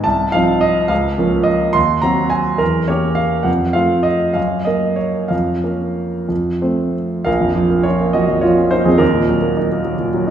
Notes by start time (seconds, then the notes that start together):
0.04 C2 A5
0.32 F3 C4 D#4 F5
0.61 D#5
0.88 C#2 F5
1.18 F3 A#3 C#4
1.43 D#5
1.73 D#2 C6
2.02 F#3 C4 F#4 A#5
2.30 G#5
2.58 E2 A#4
2.88 A#3 C#4 G4 C#5
3.15 F5
3.43 F2 F#5
3.73 A3 C4 F4 F5
4.03 D#5
4.33 F#2 F5
4.65 A#3 A#4 D#5
4.96 C#5
5.28 F2 F5
5.64 A#3 C#4 A#4
6.29 F2
6.61 A3 C4 C5
7.25 A#1 A#4 F5
7.41 F2
7.55 F3
7.70 A#3
7.83 C#4 F4 C#5
8.01 A#3
8.13 F3 F#4 D#5
8.29 F2
8.41 F3 F4 C#5
8.58 C#4
8.71 A#3 D#4 C5
8.85 F2 C4 G#4
8.98 D#2 D#4 A#4
9.14 A#2
9.29 F#3
9.42 A#3
9.57 D#4
9.72 A#3
9.85 F#3
9.98 A#2
10.14 F#3
10.27 D#4